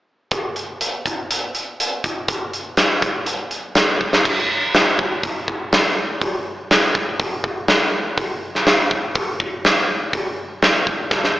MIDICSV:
0, 0, Header, 1, 2, 480
1, 0, Start_track
1, 0, Tempo, 490597
1, 316, Time_signature, 4, 2, 24, 8
1, 11152, End_track
2, 0, Start_track
2, 0, Title_t, "Drums"
2, 304, Note_on_c, 9, 42, 59
2, 309, Note_on_c, 9, 36, 88
2, 402, Note_off_c, 9, 42, 0
2, 407, Note_off_c, 9, 36, 0
2, 547, Note_on_c, 9, 42, 45
2, 645, Note_off_c, 9, 42, 0
2, 791, Note_on_c, 9, 42, 62
2, 889, Note_off_c, 9, 42, 0
2, 1033, Note_on_c, 9, 36, 59
2, 1039, Note_on_c, 9, 42, 49
2, 1131, Note_off_c, 9, 36, 0
2, 1137, Note_off_c, 9, 42, 0
2, 1278, Note_on_c, 9, 42, 69
2, 1376, Note_off_c, 9, 42, 0
2, 1513, Note_on_c, 9, 42, 47
2, 1611, Note_off_c, 9, 42, 0
2, 1762, Note_on_c, 9, 42, 68
2, 1859, Note_off_c, 9, 42, 0
2, 1997, Note_on_c, 9, 36, 70
2, 1999, Note_on_c, 9, 42, 50
2, 2095, Note_off_c, 9, 36, 0
2, 2097, Note_off_c, 9, 42, 0
2, 2233, Note_on_c, 9, 42, 61
2, 2235, Note_on_c, 9, 36, 85
2, 2331, Note_off_c, 9, 42, 0
2, 2333, Note_off_c, 9, 36, 0
2, 2479, Note_on_c, 9, 42, 42
2, 2577, Note_off_c, 9, 42, 0
2, 2712, Note_on_c, 9, 42, 68
2, 2714, Note_on_c, 9, 38, 82
2, 2810, Note_off_c, 9, 42, 0
2, 2812, Note_off_c, 9, 38, 0
2, 2956, Note_on_c, 9, 42, 42
2, 2958, Note_on_c, 9, 36, 68
2, 3054, Note_off_c, 9, 42, 0
2, 3055, Note_off_c, 9, 36, 0
2, 3193, Note_on_c, 9, 42, 60
2, 3291, Note_off_c, 9, 42, 0
2, 3433, Note_on_c, 9, 42, 42
2, 3531, Note_off_c, 9, 42, 0
2, 3671, Note_on_c, 9, 42, 68
2, 3673, Note_on_c, 9, 38, 99
2, 3769, Note_off_c, 9, 42, 0
2, 3771, Note_off_c, 9, 38, 0
2, 3921, Note_on_c, 9, 36, 49
2, 4019, Note_off_c, 9, 36, 0
2, 4041, Note_on_c, 9, 38, 61
2, 4139, Note_off_c, 9, 38, 0
2, 4161, Note_on_c, 9, 36, 74
2, 4163, Note_on_c, 9, 49, 64
2, 4259, Note_off_c, 9, 36, 0
2, 4261, Note_off_c, 9, 49, 0
2, 4642, Note_on_c, 9, 46, 41
2, 4644, Note_on_c, 9, 38, 88
2, 4740, Note_off_c, 9, 46, 0
2, 4742, Note_off_c, 9, 38, 0
2, 4882, Note_on_c, 9, 36, 62
2, 4980, Note_off_c, 9, 36, 0
2, 5121, Note_on_c, 9, 36, 77
2, 5124, Note_on_c, 9, 46, 38
2, 5219, Note_off_c, 9, 36, 0
2, 5222, Note_off_c, 9, 46, 0
2, 5362, Note_on_c, 9, 36, 61
2, 5459, Note_off_c, 9, 36, 0
2, 5602, Note_on_c, 9, 46, 47
2, 5604, Note_on_c, 9, 38, 91
2, 5700, Note_off_c, 9, 46, 0
2, 5702, Note_off_c, 9, 38, 0
2, 6080, Note_on_c, 9, 36, 75
2, 6088, Note_on_c, 9, 46, 39
2, 6178, Note_off_c, 9, 36, 0
2, 6185, Note_off_c, 9, 46, 0
2, 6563, Note_on_c, 9, 46, 41
2, 6565, Note_on_c, 9, 38, 92
2, 6661, Note_off_c, 9, 46, 0
2, 6663, Note_off_c, 9, 38, 0
2, 6800, Note_on_c, 9, 36, 64
2, 6898, Note_off_c, 9, 36, 0
2, 7041, Note_on_c, 9, 36, 89
2, 7042, Note_on_c, 9, 46, 39
2, 7139, Note_off_c, 9, 36, 0
2, 7139, Note_off_c, 9, 46, 0
2, 7279, Note_on_c, 9, 36, 63
2, 7377, Note_off_c, 9, 36, 0
2, 7516, Note_on_c, 9, 46, 40
2, 7518, Note_on_c, 9, 38, 100
2, 7613, Note_off_c, 9, 46, 0
2, 7615, Note_off_c, 9, 38, 0
2, 7998, Note_on_c, 9, 46, 37
2, 8000, Note_on_c, 9, 36, 79
2, 8096, Note_off_c, 9, 46, 0
2, 8097, Note_off_c, 9, 36, 0
2, 8367, Note_on_c, 9, 38, 26
2, 8465, Note_off_c, 9, 38, 0
2, 8479, Note_on_c, 9, 46, 43
2, 8481, Note_on_c, 9, 38, 90
2, 8576, Note_off_c, 9, 46, 0
2, 8578, Note_off_c, 9, 38, 0
2, 8718, Note_on_c, 9, 36, 57
2, 8816, Note_off_c, 9, 36, 0
2, 8953, Note_on_c, 9, 46, 47
2, 8957, Note_on_c, 9, 36, 89
2, 9051, Note_off_c, 9, 46, 0
2, 9055, Note_off_c, 9, 36, 0
2, 9197, Note_on_c, 9, 36, 71
2, 9295, Note_off_c, 9, 36, 0
2, 9439, Note_on_c, 9, 46, 48
2, 9441, Note_on_c, 9, 38, 91
2, 9537, Note_off_c, 9, 46, 0
2, 9539, Note_off_c, 9, 38, 0
2, 9914, Note_on_c, 9, 36, 83
2, 9916, Note_on_c, 9, 46, 40
2, 10012, Note_off_c, 9, 36, 0
2, 10014, Note_off_c, 9, 46, 0
2, 10394, Note_on_c, 9, 46, 40
2, 10396, Note_on_c, 9, 38, 91
2, 10492, Note_off_c, 9, 46, 0
2, 10494, Note_off_c, 9, 38, 0
2, 10634, Note_on_c, 9, 36, 57
2, 10732, Note_off_c, 9, 36, 0
2, 10870, Note_on_c, 9, 38, 44
2, 10872, Note_on_c, 9, 36, 97
2, 10968, Note_off_c, 9, 38, 0
2, 10970, Note_off_c, 9, 36, 0
2, 10996, Note_on_c, 9, 38, 41
2, 11094, Note_off_c, 9, 38, 0
2, 11152, End_track
0, 0, End_of_file